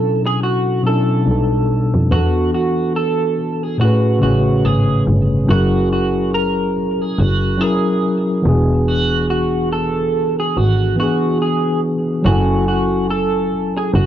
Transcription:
Already playing: B2 F#3 C#4 D4 E4 A4
0.26 G#4
0.43 F#4
0.82 B2 F#3 C#4
0.87 D4 E4 A4
1.25 B1 B2 G3 D4
1.29 D#4 A4
1.94 F2
2.09 E2 E3 B3 D4 F#4
2.14 F#4 A4
2.54 F#4
2.96 A4
3.63 G#4
3.77 A2 A3 C#4 F#4
3.82 G#4 B4
4.19 A1 C#3 A3 C#4 F#4
4.24 G#4 C#5
4.65 G#1 G#4
5.08 G1
5.46 F#1 F#3 C#4 E4
5.50 F#4 G#4 A#4
5.93 F#4
6.34 A#4
7.01 G#4
7.19 F#1 F#4
7.57 F#3 C#4 E4 G#4
7.62 G#4 A#4
8.42 E1 E3 B3 D4
8.47 F#4 G#4
8.88 F#4
9.30 F#4
9.72 A4
10.40 G#4
10.57 G#1 F#4
10.96 E3 B3 D4 F#4
11.01 F#4 G#4
11.42 G#4
12.22 F#1 F#3 C#4 E4 F#4
12.27 A4 G#5
12.68 F#4
13.10 A4
13.77 G#4
13.94 F#1 F#4

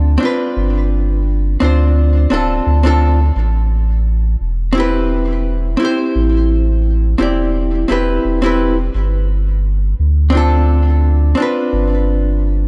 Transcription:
Already playing: D2 C4 D4 F4 A4
0.18 C4 D4
0.23 F4 B4
0.57 G1
1.60 D2 C4 D4 F4
1.64 C5
2.30 D1 C4 D4 F4 A4
2.66 D2
2.83 C4 D4 F4 A4
3.36 A1
4.41 E1
4.73 C4 E4
4.77 G4 B4
5.77 C4 E4
5.82 G4 C5
6.15 A1
7.18 E1 C4 E4 G4
7.22 D5
7.88 E1 C4 E4 G4 B4
8.25 E1
8.42 C4 E4 G4
8.46 B4
8.95 G1
9.99 D2
10.30 C4 D4
10.35 F4 A4
11.35 C4 D4
11.40 F4 B4
11.73 G1

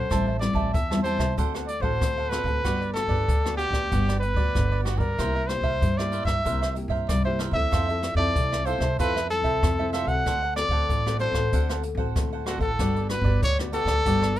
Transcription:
Already playing: C5
0.10 A1 A2 G3 C4 E4 G4 C5 E5 A5, kick, cross-stick, closed hi-hat
0.27 C5 E5 A5
0.40 G3 C4 E4 D5, muted cavaquinho stroke, cross-stick, closed hi-hat
0.53 A1 C5 E5 A5, kick
0.73 E2 E3 E5, kick, closed hi-hat
0.90 G3 C4 E4 C5 E5 A5, cross-stick
1.03 C4 E4 G4 C5 E5 A5, closed hi-hat
1.17 C2 C5 E5 A5, kick, cross-stick, closed hi-hat
1.37 D2 D3 A3 C4 D4 F#4 A4 C5 F#5, kick, closed hi-hat
1.54 A4 C5 F#5, cross-stick, closed hi-hat
1.67 D5, muted cavaquinho stroke, closed hi-hat
1.80 A1 A3 C4 F#4 A4 C5 F#5, kick
2.01 D2 A2, kick, cross-stick, closed hi-hat
2.18 A4 C5 F#5
2.29 A3 C4 D4 F#4 A4 B4 C5 F#5, cross-stick, closed hi-hat
2.44 D2 A4 F#5, kick, closed hi-hat
2.64 G1 G3 B3 D4 F#4 G4 B4 D5, kick, cross-stick, closed hi-hat
2.81 G4 B4 D5, closed hi-hat
2.93 B3 D4 F#4 A4, muted cavaquinho stroke, cross-stick, closed hi-hat
3.07 G1 G4 B4 D5, kick
3.28 D2 D3, kick, closed hi-hat
3.44 B3 D4 F#4 G4 B4 D5, cross-stick
3.57 F#4 G4 B4 D5, closed hi-hat
3.71 D2 G4 B4 D5, kick, cross-stick
3.91 G1 G3 B3 D4 F#4 G4 B4 D5, kick, closed hi-hat
4.08 G4 B4 D5, cross-stick
4.20 B4, muted cavaquinho stroke, closed hi-hat
4.34 D2 B3 D4 F#4 B4 D5, kick, closed hi-hat
4.38 G4
4.55 G1 D3, kick, cross-stick, closed hi-hat
4.72 G4 B4 D5
4.84 B3 D4 F#4 G4 B4 D5, cross-stick, closed hi-hat
4.97 G2 A#4 B4 D5, kick, closed hi-hat
5.02 G4
5.18 C2 C3 A#3 E4 G4 A#4 C5 E5, kick, cross-stick, closed hi-hat
5.35 A#4 C5 E5
5.47 A#3 E4 G4 C5, muted cavaquinho stroke, cross-stick, closed hi-hat
5.61 C2 A#4 C5 E5, kick
5.82 G2, kick, closed hi-hat
5.97 A#3 E4 G4 A#4 C5 D5 E5, cross-stick
6.12 E4 A#4 C5 E5, closed hi-hat
6.24 G2 A#4 E5, kick, cross-stick, closed hi-hat
6.45 C2 C3 A#3 E4 G4 A#4 C5 E5, kick, closed hi-hat
6.62 A#4 C5 E5, cross-stick, closed hi-hat
6.75 A#3 E4 G4, muted cavaquinho stroke, closed hi-hat
6.88 G2 A#4 C5 E5, kick
7.08 C2 G2 D5, kick, cross-stick, closed hi-hat
7.25 A#3 E4 G4 A#4 C5 E5
7.39 E4 A#4 C5 E5, cross-stick, closed hi-hat
7.51 D2 C4 E4 A4 A#4 C5 E5, kick, closed hi-hat
7.71 F2 F3 F4 A4 C5 E5, kick, cross-stick, closed hi-hat
7.89 C4 E4 A4 E5, closed hi-hat
8.02 muted cavaquinho stroke, cross-stick, closed hi-hat
8.15 F2 C4 E4 A4 C5 D5 E5, kick
8.36 C2 C3, kick, closed hi-hat
8.52 A4 C5 E5, cross-stick
8.65 C4 E4 F4 A4 C5 E5, closed hi-hat
8.78 C2 A4 C5 E5, kick, cross-stick
8.99 F2 F3 C4 E4 F4 A4 B4 C5 E5, kick, closed hi-hat
9.16 C5 E5, cross-stick
9.30 C4 E4 A4, muted cavaquinho stroke, closed hi-hat
9.42 C2 A4 C5 E5, kick, closed hi-hat
9.63 F2 C3, kick, cross-stick, closed hi-hat
9.79 C4 E4 A4 C5 E5
9.93 F4 A4 C5 E5, cross-stick, closed hi-hat
10.05 C2 C4 F#4 A4 C5 E5 F#5, kick, closed hi-hat
10.26 D2 D3 D4 A4 C5 F#5, kick, cross-stick, closed hi-hat
10.42 A4 C5 F#5
10.56 C4 F#4 A4 D5, muted cavaquinho stroke, cross-stick, closed hi-hat
10.68 D2 A4 C5 F#5, kick
10.89 A1 A2, kick, closed hi-hat
11.06 C4 F#4 A4 C5 F#5, cross-stick
11.19 C4 D4 F#4 A4 C5 F#5, closed hi-hat
11.32 A1 F#5, kick, cross-stick, closed hi-hat
11.36 A4
11.53 D2 D3 C4 D4 F#4 A4 C5 F#5, kick, closed hi-hat
11.69 A4 C5 F#5, cross-stick, closed hi-hat
11.83 muted cavaquinho stroke, closed hi-hat
11.95 A1 C4 F#4 A4 C5 F#5, kick
11.99 A4
12.16 D2 A2, kick, cross-stick, closed hi-hat
12.33 A4 C5 F#5
12.46 C4 D4 F#4 A4 C5 F#5, cross-stick, closed hi-hat
12.58 A1 A4 C5 F#5, kick, closed hi-hat
12.62 A4
12.79 G1 G3 B3 D4 F#4 G4 B4 D5, kick, cross-stick, closed hi-hat
12.96 G4 B4 D5, closed hi-hat
13.09 B3 D4 F#4 B4, muted cavaquinho stroke, cross-stick, closed hi-hat
13.21 G1 B4 D5, kick
13.26 G4
13.42 D2 D3 C#5, kick, closed hi-hat
13.59 B3 D4 F#4 G4 B4 D5, cross-stick
13.73 B3 D4 F#4 G4 A4 B4 D5, closed hi-hat
13.85 D2 B4 D5, kick, cross-stick
13.89 G4
14.06 G1 G3 B3 D4 F#4 G4 B4 D5, kick, closed hi-hat
14.22 G4 D5, cross-stick
14.36 muted cavaquinho stroke, closed hi-hat

